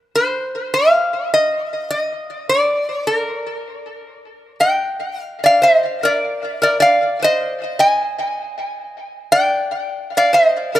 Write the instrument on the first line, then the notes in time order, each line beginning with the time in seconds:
resonator guitar played with a steel bar
0.15 C5
0.74 F5
1.34 D#5
1.91 D#5
2.49 D5
3.07 A#4
4.60 D#5 G5
5.21 F5
5.44 D5 F5
5.62 C5 D#5
6.03 A#4 D5
6.62 A#4 D5
6.80 D5 F5
7.22 C5 D#5
7.79 D#5 G#5
9.32 D5 G5
10.17 D5 F5
10.33 C5 D#5
10.75 A#4 D5